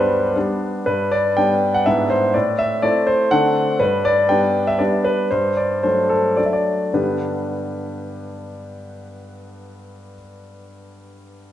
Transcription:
Already playing: G2 G3 B3 D4 G4 B4 C5
0.36 G3 B3 D4
0.86 G2 B4
1.12 D5
1.37 G3 B3 D4 G5
1.74 F#5
1.86 G#2 B3 D4 E4 E5
2.10 C5
2.34 A2 D5
2.59 E5
2.82 A3 C4 E4 D5
3.07 C5
3.31 D3 A3 C4 D4 F#5
3.80 G2 B4
4.05 D5
4.29 G3 B3 D4 G5
4.67 E5
4.79 G3 B3 D4 D5
5.05 B4
5.31 G2 C5
5.57 D5
5.83 F#3 A3 D4 C5
6.09 A4
6.37 F#3 A3 D4 D5
6.46 E5
6.53 D5
6.93 G2 D3 B3 D4 G4 B4

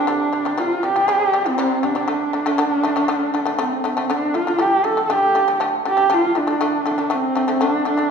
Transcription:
Already playing: D4
0.07 C3 G3
0.33 C3 G3
0.45 C3 G3
0.58 C3 G3 F4
0.83 C3 G3 G4
0.96 C3 G3
1.08 C3 G3
1.33 C3 G3
1.46 C3 G3 C4
1.58 C3 G3
1.83 C3 G3 D4
1.95 C3 G3
2.08 D3 A3
2.33 D3 A3
2.46 D3 A3
2.58 D3 A3
2.83 D3 A3
2.96 D3 A3
3.08 D3 A3
3.34 D3 A3
3.45 D3 A3
3.59 D3 A3 C4
3.84 D3 A3 C4
3.97 D3 A3
4.10 D3 A3 D4
4.34 D3 A3 F4
4.47 D3 A3
4.59 D3 A3 G4
4.84 D3 A3 A4
4.97 D3 A3
5.05 A4
5.10 D3 A3 G4
5.35 D3 A3
5.48 D3 A3
5.60 D3 A3
5.85 D3 A3 G4
5.97 D3 A3
6.10 D3 A3 F4
6.35 D3 A3 D4
6.47 D3 A3
6.61 D3 A3
6.86 D3 A3 D4
6.98 D3 A3
7.10 D3 A3 C4
7.35 D3 A3
7.48 D3 A3
7.61 D3 A3 D4
7.85 D3 A3 D4
7.97 D3 A3

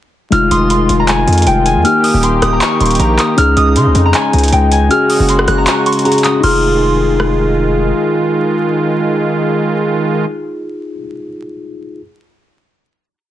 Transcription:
0.31 F1 D#3 G#3 D#4 F4 F6, closed hi-hat
0.51 F1 C6 D#6, closed hi-hat
0.70 C6, closed hi-hat
0.89 F1, closed hi-hat
1.00 A#5
1.08 G#5, clap, closed hi-hat
1.28 F2, closed hi-hat
1.33 closed hi-hat
1.38 closed hi-hat
1.42 closed hi-hat
1.47 F1 G5, closed hi-hat
1.65 G#5, closed hi-hat
1.76 F2
1.83 A#3 D#4 G4 F6, closed hi-hat
2.04 D#6, open hi-hat
2.14 D#1
2.23 C6, closed hi-hat
2.42 D#1 D#6, cross-stick, closed hi-hat
2.53 A#5
2.61 C#6, clap, closed hi-hat
2.80 D#1 C6 C#6, closed hi-hat
2.86 closed hi-hat
2.91 closed hi-hat
2.95 closed hi-hat
3.00 A#1 A#5, closed hi-hat
3.19 D#6, clap, closed hi-hat
3.36 C#2 C#3 G#3 C#4 D#4 G#4 F6, closed hi-hat
3.57 C#2 D#6, closed hi-hat
3.76 C#3 C6, closed hi-hat
3.86 C#2
3.95 F2, closed hi-hat
4.05 A#5
4.14 G#5, clap, closed hi-hat
4.33 C#2, closed hi-hat
4.38 closed hi-hat
4.43 closed hi-hat
4.48 closed hi-hat
4.52 C#2 G5, closed hi-hat
4.72 G#5, closed hi-hat
4.89 C#4 F#4 G#4 F6, closed hi-hat
5.10 D#6, open hi-hat
5.20 F#1
5.29 C6, closed hi-hat
5.39 cross-stick
5.48 F#1 F#6, cross-stick, closed hi-hat
5.58 A#5
5.67 C#6, clap, closed hi-hat
5.86 C6 C#6, closed hi-hat
5.92 closed hi-hat
5.99 closed hi-hat
6.05 C#4 F#4 G#4 A#5, closed hi-hat
6.12 closed hi-hat
6.18 closed hi-hat
6.24 D#6, clap, closed hi-hat
6.40 F1 D#3 G#3 D#4 F4 C6 F6, crash
6.46 G#4
7.20 cross-stick

